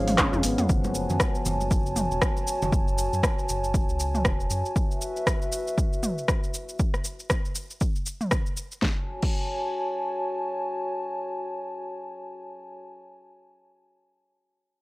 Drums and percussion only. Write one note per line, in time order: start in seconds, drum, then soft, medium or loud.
0.08 mid tom medium
0.08 open hi-hat medium
0.08 shaker soft
0.18 kick loud
0.18 cross-stick loud
0.18 clap loud
0.18 closed hi-hat medium
0.18 high tom medium
0.18 shaker medium
0.33 high tom medium
0.33 muted conga soft
0.33 shaker soft
0.43 open hi-hat loud
0.43 shaker medium
0.58 closed hi-hat soft
0.58 mid tom medium
0.58 muted conga medium
0.58 shaker soft
0.69 kick loud
0.69 shaker medium
0.84 muted conga medium
0.84 high conga medium
0.84 shaker soft
0.95 shaker medium
1.10 muted conga soft
1.10 low conga loud
1.10 shaker soft
1.20 kick loud
1.20 cross-stick loud
1.20 shaker medium
1.35 shaker soft
1.46 muted conga medium
1.46 low conga loud
1.46 shaker medium
1.61 high conga medium
1.61 shaker soft
1.71 kick loud
1.71 muted conga soft
1.71 shaker medium
1.86 shaker soft
1.96 mid tom medium
1.96 muted conga soft
1.96 high conga medium
1.96 shaker medium
2.12 shaker soft
2.22 kick loud
2.22 cross-stick loud
2.22 shaker medium
2.37 muted conga soft
2.37 shaker soft
2.47 shaker medium
2.62 muted conga medium
2.62 low conga loud
2.62 shaker soft
2.72 kick loud
2.72 shaker medium
2.88 shaker soft
2.98 shaker medium
3.13 shaker soft
3.23 kick loud
3.23 cross-stick loud
3.23 shaker medium
3.39 shaker soft
3.49 shaker medium
3.64 shaker soft
3.74 kick loud
3.74 shaker medium
3.89 shaker soft
4.00 shaker medium
4.15 mid tom medium
4.15 shaker soft
4.25 kick loud
4.25 cross-stick loud
4.25 shaker medium
4.40 shaker soft
4.50 shaker medium
4.66 shaker soft
4.76 kick loud
4.76 shaker medium
4.91 shaker soft
5.01 shaker medium
5.16 shaker soft
5.27 kick loud
5.27 cross-stick loud
5.27 shaker medium
5.42 shaker soft
5.52 shaker medium
5.68 shaker soft
5.78 kick loud
5.78 shaker medium
5.93 shaker soft
6.03 mid tom medium
6.03 shaker medium
6.18 shaker soft
6.28 kick loud
6.28 cross-stick loud
6.28 shaker medium
6.44 shaker soft
6.54 shaker medium
6.69 shaker soft
6.79 kick loud
6.79 shaker medium
6.94 cross-stick medium
6.94 shaker soft
7.05 shaker medium
7.20 shaker soft
7.30 kick loud
7.30 cross-stick loud
7.30 shaker medium
7.45 shaker soft
7.55 shaker medium
7.70 shaker soft
7.81 kick loud
7.81 shaker soft
7.96 shaker soft
8.06 shaker medium
8.21 mid tom medium
8.21 shaker soft
8.31 kick loud
8.31 cross-stick loud
8.31 shaker medium
8.46 shaker soft
8.57 shaker medium
8.72 shaker soft
8.82 kick loud
8.82 snare medium
9.22 kick loud
9.22 crash medium